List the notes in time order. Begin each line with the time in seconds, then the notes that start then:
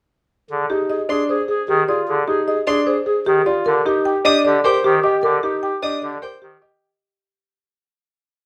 0.50 D3 G#4
0.70 D#4 G4 G#4
0.90 G#4 D#5
1.09 D4 G#4 C6
1.29 G#4 C5
1.48 G#4
1.68 D#3 G4 G#4
1.88 F4 G#4 D5
2.07 D3 G#4
2.27 D#4 G4 G#4
2.47 G#4 D#5
2.66 D4 G#4 C6
2.86 G#4 C5
3.06 G#4
3.26 D#3 G4 G#4
3.46 F4 D5
3.66 D3 G4 A#4
3.85 D#4 G4
4.05 G4 G5
4.25 D4 G4 D#5 D#6
4.45 D3 G4 D5
4.64 G4 A#4 C5 G5
4.84 D#3 G4
5.04 G4 D#5
5.23 D3 G4 A#4
5.43 D#4 G4
5.63 G4 G5
5.83 D4 G4 D#5 D#6
6.02 D3 G4 D5
6.22 G4 A#4 C5 G5
6.42 D#3 G4
6.62 G4 D#5